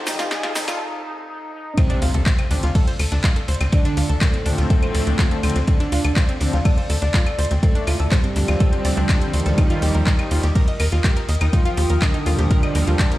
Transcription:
Already playing: C3 F4 A4 C5 A5, riser
0.07 F2 D#3 F3 G3 D#4, snare, open hi-hat, ride, claves, shaker
0.19 F2 F4, snare, closed hi-hat, shaker
0.31 D#3 F3 G3 D#4, kick, snare, closed hi-hat, ride, shaker
0.43 F4, snare, closed hi-hat, ride
0.55 F2 D#3 F3 G3 D#4, snare, open hi-hat, ride, shaker
0.68 F2 F4, snare, closed hi-hat, claves, shaker
0.80 D#4
1.04 D#4
1.29 D#4
1.53 D#4
1.77 C3 C4, kick, closed hi-hat, ride, impact, claves
1.90 D4, closed hi-hat
2.02 D2 F4, open hi-hat, ride
2.14 D2 A4, closed hi-hat
2.25 C5 D5, kick, snare, clap, closed hi-hat, ride
2.38 C4, closed hi-hat, ride, claves
2.51 D2 D3 F3 C4 D4, open hi-hat, ride
2.63 D2 F4, snare, closed hi-hat
2.75 A4, kick, closed hi-hat, open hi-hat
2.87 C5, closed hi-hat
2.99 D2 A4, open hi-hat, ride, claves
3.12 D2 D4, snare, closed hi-hat
3.24 F4, kick, snare, clap, closed hi-hat, ride
3.36 A4, closed hi-hat
3.48 D2 C5, open hi-hat, ride
3.54 closed hi-hat
3.61 D2 C4, snare, closed hi-hat, claves
3.72 D3 C4 D4, kick, closed hi-hat, ride
3.85 D4, closed hi-hat
3.97 D2 F4, open hi-hat, ride
4.09 D2 A4, closed hi-hat
4.21 A2 A3 C5, kick, snare, clap, closed hi-hat, ride, claves
4.33 C4, closed hi-hat, ride
4.45 D2 D3 F3 C4 D4, open hi-hat, ride
4.58 D2 F4, snare, closed hi-hat
4.70 A4, kick, closed hi-hat, ride
4.83 C5, closed hi-hat, claves
4.95 D2 A4, open hi-hat, ride
5.07 D2 D4, closed hi-hat
5.19 F4, kick, snare, clap, closed hi-hat, ride
5.31 A4, closed hi-hat, ride
5.43 D2 D3 F3 C4 C5, open hi-hat, ride, claves
5.50 closed hi-hat
5.56 D2 C4, snare, closed hi-hat
5.67 D3 C4 D4, kick, closed hi-hat, ride
5.80 D4, closed hi-hat
5.92 D2 F4, open hi-hat, ride
6.04 D2 A4, closed hi-hat, claves
6.16 C5, kick, snare, clap, closed hi-hat, ride
6.28 C4, closed hi-hat, ride
6.40 D2 D3 F3 C4 D4, open hi-hat, ride
6.53 D2 F4, snare, closed hi-hat
6.65 A4, kick, closed hi-hat, open hi-hat, claves
6.78 C5, closed hi-hat
6.90 D2 A4, open hi-hat, ride
7.02 D2 D4, snare, closed hi-hat
7.14 F4, kick, snare, clap, closed hi-hat, ride
7.26 A4, closed hi-hat, claves
7.38 D2 C5, open hi-hat, ride
7.45 closed hi-hat
7.51 D2 C4, snare, closed hi-hat
7.63 A2 A3 C4, kick, closed hi-hat, ride
7.75 D4, closed hi-hat
7.87 D2 F4, open hi-hat, ride, claves
8.00 D2 A4, closed hi-hat
8.12 G2 G3 C5, kick, snare, clap, closed hi-hat, ride
8.23 C4, closed hi-hat, ride
8.36 D2 D3 F3 C4 D4, open hi-hat, ride
8.48 D2 F4, snare, closed hi-hat, claves
8.60 A4, kick, closed hi-hat, ride
8.73 C5, closed hi-hat
8.84 D2 D5, open hi-hat, ride
8.97 D2 D4, closed hi-hat
9.09 D4, kick, snare, clap, closed hi-hat, ride, claves
9.21 D3 F3 C4 C5, closed hi-hat, ride
9.33 D2 D#3 F3 G3 C4, open hi-hat, ride
9.40 closed hi-hat
9.46 D2 A4, snare, closed hi-hat
9.58 D#3 D#4, kick, closed hi-hat, ride, claves
9.67 F4 A#4, closed hi-hat
9.82 D#2 G4, open hi-hat, ride
9.95 D#2 A#4, closed hi-hat
10.06 D#5, kick, snare, clap, closed hi-hat, ride
10.19 D#4, closed hi-hat, ride, claves
10.25 D#6
10.31 D#2 D#3 F3 G3 F4, open hi-hat, ride
10.43 D#2 G4, snare, closed hi-hat
10.55 A#4, kick, closed hi-hat, open hi-hat
10.62 G5
10.68 D#5, closed hi-hat
10.80 D#2 A#4, open hi-hat, ride, claves
10.92 D#2 F4, snare, closed hi-hat
11.03 G4, kick, snare, clap, closed hi-hat, ride
11.17 A#4, closed hi-hat
11.29 D#2 D#5, open hi-hat, ride
11.35 closed hi-hat
11.41 D#2 D#4, snare, closed hi-hat, claves
11.53 F3 D#4 F4, kick, closed hi-hat, ride
11.65 F4, closed hi-hat
11.77 D#2 G4, open hi-hat, ride
11.90 D#2 A#4, closed hi-hat
12.02 D3 D4 D#5, kick, snare, clap, closed hi-hat, ride, claves
12.14 D#4, closed hi-hat, ride
12.26 D#2 A#2 F3 G3 F4, open hi-hat, ride
12.38 D#2 G4, snare, closed hi-hat
12.51 A#4, kick, closed hi-hat, ride
12.63 D#5, closed hi-hat, claves
12.75 D#2 A#4, open hi-hat, ride
12.87 D#2 F4, closed hi-hat
12.99 G4, kick, snare, clap, closed hi-hat, ride
13.12 A#4, closed hi-hat, ride

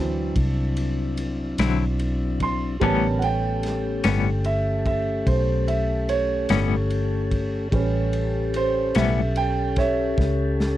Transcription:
Already playing: D2 E3 F#3 C4 D4 E4 A5
0.36 C2, kick, ride
0.77 ride
1.17 ride
1.58 B1 D3 F#3 C4 E4, snare, ride
1.99 ride
2.40 C6, kick, ride
2.80 A1 A2 D3 G3 B3 C#4 G4 A#4 A5, kick, ride
3.19 A3 C#4 G4 F#5, ride
3.23 A4 G5
3.63 snare, ride
4.04 G1 A2 G3 B3 C#4, snare, ride
4.44 E5, ride
4.86 E5, kick, ride
5.27 B1 C5, kick, ride
5.68 E5, ride
6.09 C#5, ride
6.49 G1 A2 G3 B3 C#4, snare, ride
6.90 ride
7.31 kick, ride
7.71 A1 G3 C#4 G4 A4 B4, kick, ride
8.13 ride
8.54 C5, ride
8.95 B1 A2 G3 B3 C#4 E5, snare, ride
9.36 G5, ride
9.76 C#5 E5, kick, snare, ride
10.18 C#2, kick, snare
10.60 snare

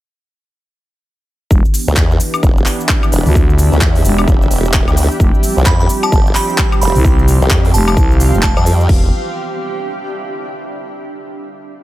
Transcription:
1.51 E1 E3 B3 D4 G4, kick, cabasa
1.65 cabasa
1.74 G4 E5, open hi-hat, cabasa
1.88 D2, cabasa
1.96 E2, kick, clap, cabasa
2.10 B5, cabasa
2.20 open hi-hat, cabasa
2.34 cabasa, high woodblock
2.43 F1, kick, cabasa
2.57 cabasa
2.66 clap, open hi-hat, cabasa
2.80 cabasa
2.89 kick, clap, cabasa
3.03 cabasa, high woodblock
3.12 E1, open hi-hat, cabasa
3.26 D2, open hi-hat, cabasa
3.35 kick, cabasa
3.50 cabasa
3.58 open hi-hat, cabasa
3.72 D2, cabasa
3.81 E2, kick, clap, cabasa
3.95 open hi-hat, cabasa
4.05 E1, open hi-hat, cabasa
4.18 cabasa, high woodblock
4.28 F1, kick, cabasa
4.42 cabasa
4.51 E1, open hi-hat, cabasa
4.65 cabasa
4.73 kick, clap, cabasa
4.88 D2, cabasa, high woodblock
4.97 open hi-hat, cabasa
5.11 cabasa
5.20 F1 F3 G3 C4, kick, cabasa
5.34 cabasa
5.43 open hi-hat, cabasa
5.56 C2 C6, cabasa
5.66 F2 B5, kick, clap, cabasa
5.76 F5
5.80 B5, cabasa
5.89 open hi-hat, cabasa
6.03 A5, cabasa, high woodblock
6.12 G1, kick, cabasa
6.27 cabasa
6.35 B5, clap, open hi-hat, cabasa
6.50 cabasa
6.58 kick, clap, cabasa
6.72 cabasa, high woodblock
6.81 F1 B5, open hi-hat, cabasa
6.95 C2, open hi-hat, cabasa
7.05 kick, cabasa
7.19 cabasa
7.28 open hi-hat, cabasa
7.42 C2, cabasa
7.50 F2, kick, clap, cabasa
7.65 open hi-hat, cabasa
7.74 F1 A5, open hi-hat, cabasa
7.88 A5, cabasa, high woodblock
7.97 C2, kick, cabasa
8.11 cabasa
8.20 open hi-hat, cabasa
8.34 F1, cabasa
8.43 A5, kick, clap, cabasa
8.57 F2 A5, cabasa, high woodblock
8.66 open hi-hat, cabasa
8.80 cabasa
8.89 E1 E3 B3 D4 G4, kick, crash
8.97 G4
9.05 E5
9.10 B5

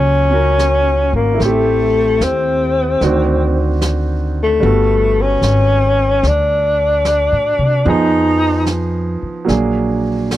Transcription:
Already playing: C#2 F#3 A#3 C#4 F4 G#4
0.31 C#4 F#4 A#4
0.59 snare, hi-hat pedal
1.13 G#1 A#3
1.34 A3 E4
1.40 A1 A3 C4, brush sweep, snare
1.45 G4
2.20 D#2 C4, snare, hi-hat pedal
3.01 D2 D#3 C4 D4 F#4, brush sweep, snare
3.81 snare, hi-hat pedal
4.43 A3
4.60 G1 G3 B3 F#4, brush sweep
4.66 A4
5.22 C#4
5.42 G#1, snare, hi-hat pedal
6.23 D2, brush sweep, snare
6.27 D4
7.05 snare, hi-hat pedal
7.32 A2
7.58 C3
7.85 F2 F3 B3 D#4 G#4, brush sweep
7.90 D#4
8.66 snare, hi-hat pedal
9.22 muted upright bass stroke
9.45 A#1 F#3 A#3 D4, brush sweep, snare
9.49 G#4
10.31 snare, hi-hat pedal

